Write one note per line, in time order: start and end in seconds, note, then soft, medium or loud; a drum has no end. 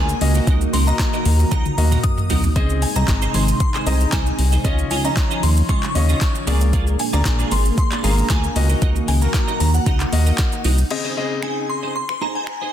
0.00 0.15 D2 loud
0.00 0.16 A#3 medium
0.00 0.19 A#3 medium
0.00 2.52 A#3 medium
0.00 0.19 D4 medium
0.00 0.19 G#4 medium
0.00 0.21 G#4 medium
0.00 0.21 D5 medium
0.00 0.32 G#5 medium
0.09 muted clean electric guitar stroke soft
0.09 shaker medium
0.21 0.40 C#2 loud
0.21 2.54 D#3 medium
0.21 0.73 A#3 medium
0.21 2.54 F#4 medium
0.21 0.73 F#4 medium
0.21 0.74 D#5 medium
0.21 muted clean electric guitar stroke soft
0.21 open hi-hat medium
0.21 shaker medium
0.35 0.46 D#4 medium
0.35 0.46 F#4 medium
0.35 0.47 A#4 medium
0.35 0.47 D#5 medium
0.35 shaker medium
0.47 0.67 C#2 loud
0.47 0.68 D#4 medium
0.47 0.61 F#4 medium
0.47 0.61 A#4 medium
0.47 0.60 D#5 medium
0.47 kick loud
0.47 closed hi-hat medium
0.47 shaker medium
0.61 muted clean electric guitar stroke soft
0.61 shaker soft
0.73 0.93 C#2 loud
0.73 0.87 D#4 medium
0.73 0.87 F#4 medium
0.73 0.86 A#4 medium
0.73 0.86 D#5 medium
0.73 0.88 C6 medium
0.73 open hi-hat medium
0.73 shaker medium
0.87 1.56 A#3 medium
0.87 0.98 D#4 soft
0.87 1.56 F#4 medium
0.87 0.99 F#4 medium
0.87 0.99 A#4 medium
0.87 0.99 D#5 medium
0.87 1.57 D#5 medium
0.87 1.50 A#5 medium
0.87 shaker medium
0.99 muted clean electric guitar stroke soft
0.99 kick loud
0.99 snare medium
0.99 clap loud
0.99 closed hi-hat medium
0.99 shaker medium
1.13 1.24 D#4 medium
1.13 1.25 F#4 medium
1.13 1.25 A#4 medium
1.13 1.25 D#5 medium
1.13 shaker medium
1.25 1.45 D#2 medium
1.25 muted clean electric guitar stroke soft
1.25 open hi-hat medium
1.25 shaker medium
1.39 muted clean electric guitar stroke medium
1.39 shaker medium
1.51 1.71 C#2 medium
1.51 1.72 D#4 medium
1.51 1.65 F#4 medium
1.51 1.65 A#4 medium
1.51 1.64 D#5 medium
1.51 2.05 A#5 medium
1.51 kick loud
1.51 closed hi-hat medium
1.51 high tom medium
1.51 shaker medium
1.65 muted clean electric guitar stroke soft
1.65 high tom medium
1.65 shaker soft
1.77 1.97 D#2 medium
1.77 2.38 A#3 medium
1.77 2.38 F#4 medium
1.77 2.38 D#5 medium
1.77 muted clean electric guitar stroke soft
1.77 open hi-hat medium
1.77 shaker medium
1.92 2.03 D#4 medium
1.92 2.03 F#4 medium
1.92 2.03 A#4 medium
1.92 2.04 D#5 medium
1.92 mid tom medium
1.92 shaker medium
2.03 2.41 D#6 loud
2.03 muted clean electric guitar stroke soft
2.03 kick loud
2.03 closed hi-hat medium
2.03 mid tom medium
2.03 shaker medium
2.18 muted clean electric guitar stroke soft
2.18 mid tom medium
2.18 shaker medium
2.30 2.49 C2 medium
2.30 2.51 D#4 medium
2.30 2.43 F#4 medium
2.30 2.43 A#4 medium
2.30 2.42 D#5 medium
2.30 floor tom loud
2.30 open hi-hat medium
2.30 shaker medium
2.44 muted clean electric guitar stroke medium
2.44 floor tom medium
2.44 shaker medium
2.56 2.85 C#2 loud
2.56 4.63 C3 medium
2.56 4.63 G#3 medium
2.56 2.86 C4 medium
2.56 2.77 D#4 medium
2.56 6.43 D#4 medium
2.56 2.86 G#4 medium
2.56 2.69 G#4 medium
2.56 2.69 C5 medium
2.56 2.86 D#5 loud
2.56 2.68 D#5 medium
2.56 kick loud
2.56 closed hi-hat medium
2.56 shaker medium
2.70 muted clean electric guitar stroke medium
2.70 shaker soft
2.82 2.96 G#5 medium
2.82 muted clean electric guitar stroke soft
2.82 open hi-hat medium
2.82 shaker medium
2.96 3.05 C2 medium
2.96 3.65 C4 medium
2.96 3.07 D#4 medium
2.96 3.65 G#4 medium
2.96 3.07 G#4 medium
2.96 3.07 C5 medium
2.96 3.08 D#5 medium
2.96 3.65 D#5 medium
2.96 3.36 A#5 loud
2.96 shaker medium
3.08 3.27 G#1 medium
3.08 kick loud
3.08 snare medium
3.08 clap loud
3.08 closed hi-hat medium
3.08 shaker medium
3.22 3.33 D#4 medium
3.22 3.33 G#4 medium
3.22 3.34 C5 medium
3.22 3.34 D#5 medium
3.22 shaker medium
3.34 3.53 G#1 loud
3.34 3.55 D#4 medium
3.34 3.48 G#4 medium
3.34 3.47 C5 medium
3.34 3.47 D#5 medium
3.34 3.59 C6 loud
3.34 open hi-hat medium
3.34 shaker medium
3.48 muted clean electric guitar stroke soft
3.48 shaker medium
3.60 3.85 C6 loud
3.60 muted clean electric guitar stroke soft
3.60 kick loud
3.60 closed hi-hat medium
3.60 shaker medium
3.74 3.85 D#4 medium
3.74 3.86 G#4 medium
3.74 3.86 C5 medium
3.74 3.86 D#5 medium
3.74 clap medium
3.74 shaker soft
3.86 4.06 C2 medium
3.86 4.47 C4 medium
3.86 4.07 D#4 medium
3.86 4.47 G#4 medium
3.86 4.00 G#4 medium
3.86 4.00 C5 medium
3.86 4.47 D#5 medium
3.86 3.99 D#5 medium
3.86 4.13 A#5 medium
3.86 open hi-hat medium
3.86 shaker medium
4.00 muted clean electric guitar stroke soft
4.00 shaker medium
4.12 4.32 C2 loud
4.12 4.33 D#4 medium
4.12 4.26 G#4 medium
4.12 4.25 C5 loud
4.12 4.25 D#5 loud
4.12 4.50 G#5 medium
4.12 kick loud
4.12 snare medium
4.12 clap loud
4.12 closed hi-hat medium
4.12 shaker medium
4.26 muted clean electric guitar stroke medium
4.26 shaker medium
4.38 4.58 C2 loud
4.38 muted clean electric guitar stroke soft
4.38 open hi-hat medium
4.38 shaker medium
4.52 4.64 D#4 medium
4.52 4.64 G#4 medium
4.52 4.65 C5 medium
4.52 4.64 D#5 medium
4.52 shaker medium
4.64 4.84 C#2 loud
4.64 6.45 C#3 medium
4.64 6.46 F3 medium
4.64 4.85 C#4 medium
4.64 4.95 C#4 medium
4.64 4.95 F4 medium
4.64 4.78 F4 medium
4.64 4.78 G#4 loud
4.64 4.95 D#5 loud
4.64 4.77 D#5 loud
4.64 kick loud
4.64 closed hi-hat medium
4.64 shaker medium
4.79 muted clean electric guitar stroke soft
4.79 shaker soft
4.91 5.10 C#2 medium
4.91 5.04 C#4 medium
4.91 5.04 F4 medium
4.91 5.04 G#4 medium
4.91 5.03 D#5 medium
4.91 4.97 G#5 medium
4.91 open hi-hat medium
4.91 shaker medium
5.04 5.74 C#4 medium
5.04 5.16 C#4 medium
5.04 5.74 F4 medium
5.04 5.16 F4 medium
5.04 5.16 G#4 medium
5.04 5.16 D#5 medium
5.04 5.74 D#5 medium
5.04 5.40 A#5 medium
5.04 shaker medium
5.17 muted clean electric guitar stroke soft
5.17 kick loud
5.17 snare medium
5.17 clap loud
5.17 closed hi-hat medium
5.17 shaker medium
5.31 5.42 C#4 medium
5.31 5.42 F4 medium
5.31 5.42 G#4 medium
5.31 5.43 D#5 medium
5.31 shaker medium
5.43 5.62 D#2 medium
5.43 5.67 C6 loud
5.43 muted clean electric guitar stroke soft
5.43 open hi-hat medium
5.43 shaker medium
5.57 muted clean electric guitar stroke medium
5.57 shaker medium
5.69 5.88 C#2 loud
5.69 5.90 C#4 medium
5.69 5.82 F4 medium
5.69 5.82 G#4 medium
5.69 5.82 D#5 loud
5.69 5.94 C#6 loud
5.69 kick loud
5.69 closed hi-hat medium
5.69 shaker medium
5.83 muted clean electric guitar stroke soft
5.83 clap medium
5.83 shaker soft
5.95 6.14 D#2 medium
5.95 6.47 C#4 medium
5.95 6.47 F4 medium
5.95 6.47 D#5 medium
5.95 6.44 C#6 loud
5.95 muted clean electric guitar stroke soft
5.95 open hi-hat medium
5.95 shaker medium
6.09 6.20 C#4 medium
6.09 6.20 F4 medium
6.09 6.20 G#4 medium
6.09 6.21 D#5 medium
6.09 shaker medium
6.21 kick loud
6.21 snare medium
6.21 clap loud
6.21 closed hi-hat medium
6.21 shaker medium
6.35 muted clean electric guitar stroke soft
6.35 shaker medium
6.47 6.96 C#2 loud
6.47 6.68 A#3 medium
6.47 6.99 A#3 medium
6.47 8.54 A#3 medium
6.47 8.54 D4 medium
6.47 6.60 F4 medium
6.47 6.99 G#4 medium
6.47 8.54 G#4 medium
6.47 6.60 G#4 medium
6.47 7.00 D5 medium
6.47 6.60 D5 loud
6.47 open hi-hat medium
6.47 shaker medium
6.61 muted clean electric guitar stroke medium
6.61 shaker medium
6.73 6.94 A#3 medium
6.73 6.86 F4 medium
6.73 6.86 G#4 medium
6.73 6.86 D5 medium
6.73 kick loud
6.73 closed hi-hat medium
6.73 shaker medium
6.87 muted clean electric guitar stroke medium
6.87 shaker soft
6.99 7.14 G#5 medium
6.99 muted clean electric guitar stroke soft
6.99 open hi-hat medium
6.99 shaker medium
7.13 7.22 D2 loud
7.13 7.82 A#3 medium
7.13 7.24 A#3 medium
7.13 7.24 F4 medium
7.13 7.83 G#4 medium
7.13 7.25 G#4 medium
7.13 7.25 D5 medium
7.13 7.83 D5 medium
7.13 7.53 A#5 medium
7.13 shaker medium
7.25 7.45 A#1 medium
7.25 muted clean electric guitar stroke soft
7.25 kick loud
7.25 snare medium
7.25 clap loud
7.25 closed hi-hat medium
7.25 shaker medium
7.39 7.50 A#3 medium
7.39 7.50 F4 medium
7.39 7.51 G#4 medium
7.39 7.51 D5 medium
7.39 shaker medium
7.51 7.71 G#1 medium
7.51 7.72 A#3 medium
7.51 7.65 F4 loud
7.51 7.64 G#4 medium
7.51 7.64 D5 loud
7.51 7.64 C6 loud
7.51 open hi-hat medium
7.51 shaker medium
7.65 muted clean electric guitar stroke medium
7.65 shaker medium
7.77 8.05 C6 loud
7.77 muted clean electric guitar stroke soft
7.77 kick loud
7.77 closed hi-hat medium
7.77 shaker medium
7.91 8.02 A#3 medium
7.91 8.02 F4 medium
7.91 8.03 G#4 medium
7.91 8.03 D5 medium
7.91 clap medium
7.91 shaker soft
8.03 8.23 G#1 medium
8.03 8.24 A#3 medium
8.03 8.54 A#3 medium
8.03 8.17 F4 medium
8.03 8.56 G#4 medium
8.03 8.17 G#4 medium
8.03 8.16 D5 loud
8.03 8.56 F5 medium
8.03 8.31 A#5 medium
8.03 open hi-hat medium
8.03 shaker medium
8.17 muted clean electric guitar stroke soft
8.17 shaker medium
8.29 8.49 D2 loud
8.29 8.51 A#3 medium
8.29 8.43 F4 medium
8.29 8.43 G#4 loud
8.29 8.42 D5 loud
8.29 8.67 G#5 medium
8.29 kick loud
8.29 snare medium
8.29 clap loud
8.29 closed hi-hat medium
8.29 shaker medium
8.43 muted clean electric guitar stroke medium
8.43 shaker medium
8.56 8.75 C#2 loud
8.56 10.88 D#3 medium
8.56 9.08 A#3 medium
8.56 10.88 A#3 medium
8.56 10.88 F#4 medium
8.56 9.08 F#4 medium
8.56 9.08 D#5 medium
8.56 muted clean electric guitar stroke medium
8.56 open hi-hat medium
8.56 shaker medium
8.69 8.80 D#4 soft
8.69 8.81 F#4 medium
8.69 8.81 A#4 medium
8.69 8.81 D#5 medium
8.69 shaker medium
8.81 9.01 C#2 loud
8.81 9.03 D#4 medium
8.81 8.95 F#4 medium
8.81 8.95 A#4 medium
8.81 8.94 D#5 medium
8.81 kick loud
8.81 closed hi-hat medium
8.81 shaker medium
8.95 muted clean electric guitar stroke medium
8.95 shaker soft
9.08 9.27 C#2 loud
9.08 9.21 D#4 medium
9.08 9.21 F#4 medium
9.08 9.21 A#4 medium
9.08 9.20 D#5 medium
9.08 9.14 G#5 medium
9.08 open hi-hat medium
9.08 shaker medium
9.21 9.91 A#3 medium
9.21 9.33 D#4 soft
9.21 9.91 F#4 medium
9.21 9.33 F#4 medium
9.21 9.33 A#4 medium
9.21 9.91 A#4 medium
9.21 9.34 D#5 medium
9.21 9.59 A#5 loud
9.21 shaker medium
9.34 kick loud
9.34 snare medium
9.34 clap loud
9.34 closed hi-hat medium
9.34 shaker medium
9.48 9.59 D#4 medium
9.48 9.59 F#4 medium
9.48 9.59 A#4 medium
9.48 9.59 D#5 medium
9.48 shaker medium
9.60 9.79 D#2 medium
9.60 9.75 A#5 loud
9.60 muted clean electric guitar stroke soft
9.60 open hi-hat medium
9.60 shaker medium
9.74 10.61 F#5 medium
9.74 muted clean electric guitar stroke soft
9.74 shaker medium
9.86 10.06 C#2 medium
9.86 10.07 D#4 medium
9.86 10.00 F#4 medium
9.86 9.99 A#4 medium
9.86 9.99 D#5 medium
9.86 kick loud
9.86 closed hi-hat medium
9.86 shaker medium
10.00 muted clean electric guitar stroke soft
10.00 clap medium
10.00 shaker soft
10.12 10.32 D#2 medium
10.12 10.73 A#3 medium
10.12 10.73 F#4 medium
10.12 10.73 D#5 medium
10.12 muted clean electric guitar stroke soft
10.12 open hi-hat medium
10.12 shaker medium
10.26 10.37 D#4 medium
10.26 10.38 F#4 medium
10.26 10.38 A#4 medium
10.26 10.38 D#5 medium
10.26 shaker medium
10.38 muted clean electric guitar stroke soft
10.38 kick loud
10.38 snare medium
10.38 clap loud
10.38 closed hi-hat medium
10.38 shaker medium
10.52 muted clean electric guitar stroke soft
10.52 shaker medium
10.64 10.84 C2 loud
10.64 10.86 D#4 medium
10.64 10.78 F#4 medium
10.64 10.78 A#4 medium
10.64 10.77 D#5 medium
10.64 open hi-hat medium
10.64 shaker medium
10.78 muted clean electric guitar stroke medium
10.78 shaker medium
10.91 11.11 C#3 medium
10.91 11.11 C4 medium
10.91 11.11 G#4 medium
10.91 11.11 D#5 medium
10.91 muted clean electric guitar stroke soft
10.91 crash medium
11.04 11.16 D#4 medium
11.04 11.16 G#4 medium
11.04 11.16 C5 medium
11.04 11.17 D#5 medium
11.17 11.97 C#3 medium
11.17 11.97 C4 medium
11.17 11.34 D#4 medium
11.17 11.97 G#4 medium
11.17 11.30 G#4 medium
11.17 11.30 C5 medium
11.17 11.97 D#5 medium
11.17 11.30 D#5 medium
11.31 muted clean electric guitar stroke soft
11.43 11.64 D#4 medium
11.43 11.56 G#4 medium
11.43 11.56 C5 medium
11.43 11.56 D#5 medium
11.43 11.55 G#5 medium
11.43 finger snap loud
11.57 muted clean electric guitar stroke soft
11.69 11.94 C6 medium
11.69 muted clean electric guitar stroke soft
11.83 11.94 D#4 medium
11.83 11.94 G#4 medium
11.83 11.95 C5 medium
11.83 11.95 D#5 medium
11.95 12.20 C6 loud
11.95 muted clean electric guitar stroke soft
12.09 finger snap medium
12.09 muted clean electric guitar stroke soft
12.21 12.35 D#4 medium
12.21 12.35 G#4 medium
12.21 12.34 C5 medium
12.21 12.34 D#5 medium
12.21 12.36 A#5 medium
12.35 12.46 D#4 medium
12.35 12.47 G#4 medium
12.35 12.47 C5 medium
12.35 12.47 D#5 medium
12.35 12.71 G#5 medium
12.47 finger snap loud
12.47 muted clean electric guitar stroke soft
12.61 12.72 D#4 medium
12.61 12.73 G#4 medium
12.61 12.73 C5 medium
12.61 12.73 D#5 medium